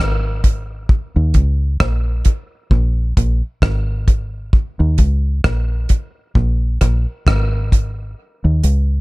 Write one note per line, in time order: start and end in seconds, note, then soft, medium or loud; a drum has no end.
0.00 0.86 G#1 medium
0.00 cross-stick loud
0.44 kick medium
0.44 closed hi-hat medium
0.89 kick loud
1.16 1.33 D#2 loud
1.34 1.76 C#2 loud
1.34 kick medium
1.34 closed hi-hat medium
1.80 2.22 A#1 medium
1.80 kick loud
1.80 cross-stick loud
2.25 kick medium
2.25 closed hi-hat medium
2.71 3.13 A#1 loud
2.71 kick loud
3.17 3.41 A#1 loud
3.17 kick loud
3.17 closed hi-hat medium
3.62 4.49 G#1 medium
3.62 kick loud
3.62 cross-stick loud
4.08 kick loud
4.08 closed hi-hat medium
4.53 kick loud
4.80 4.97 D#2 loud
4.98 5.40 C#2 medium
4.98 kick medium
4.98 closed hi-hat medium
5.44 5.86 A#1 medium
5.44 kick loud
5.44 cross-stick loud
5.89 kick medium
5.89 closed hi-hat medium
6.35 6.77 A#1 loud
6.35 kick loud
6.81 7.05 A#1 medium
6.81 kick loud
6.81 cross-stick medium
6.81 closed hi-hat medium
7.27 8.13 G#1 loud
7.27 kick loud
7.27 cross-stick loud
7.72 kick medium
7.72 closed hi-hat medium
8.44 8.61 D#2 loud
8.64 9.01 C#2 medium
8.64 closed hi-hat medium